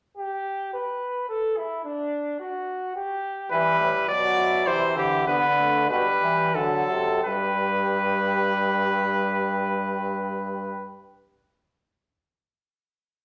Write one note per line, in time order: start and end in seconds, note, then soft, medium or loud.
0.17 0.70 G4 loud
0.73 1.28 B4 medium
1.28 1.58 A4 loud
1.57 1.84 E4 medium
1.84 2.39 D4 loud
2.40 2.95 F#4 medium
2.96 3.51 G4 loud
3.51 3.78 E3 medium
3.51 4.05 G3 loud
3.51 4.10 E4 medium
3.51 4.05 B4 loud
3.80 3.93 A2 medium
4.08 4.66 B2 medium
4.08 4.68 F#3 medium
4.08 4.39 F#4 medium
4.08 4.68 D5 loud
4.38 4.66 E4 medium
4.67 4.98 C3 medium
4.67 5.26 E3 loud
4.67 5.26 E4 loud
4.67 4.97 C5 loud
4.96 5.26 D3 medium
4.96 5.27 G4 medium
5.27 5.88 D3 loud
5.27 5.41 B3 medium
5.27 5.89 D4 loud
5.27 5.89 B4 medium
5.58 5.88 A3 medium
5.89 6.04 B2 medium
5.89 6.53 G3 medium
5.89 6.54 G4 medium
5.89 6.56 B4 medium
6.22 6.57 E3 medium
6.54 6.88 D3 medium
6.54 7.22 F#3 medium
6.54 7.23 A4 medium
6.54 7.22 A4 medium
6.89 7.23 C3 medium
7.23 10.91 G2 medium
7.23 10.90 G3 medium
7.23 10.91 G4 medium
7.23 10.91 B4 medium